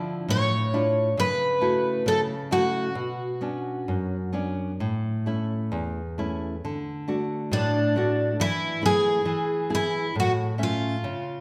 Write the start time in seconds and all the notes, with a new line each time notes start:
Already playing: D3 F3 D4 E4
0.28 A2 C#5
0.74 D4 E4 F4
1.17 C#3 B4
1.61 A3 E4 F#4
2.06 C#3 A4
2.51 A3 E4 F#4
2.95 B2
3.41 B3 C#4 D4
3.88 F#2
4.33 B3 C#4 D4
4.80 A2
5.26 A3 C#4 E4
5.72 E2
6.18 A3 C#4 E4
6.65 D3
7.08 A3 D4 F#4
7.51 A2 D4
7.96 A3 D4 F#4
8.40 E3 E4
8.82 A3 B3 E4
8.86 G#4
9.25 E3
9.70 B3 E4 G#4
9.75 E4
10.15 A2
10.20 F#4
10.58 A3 C#4 E5
10.63 F4
11.04 C#3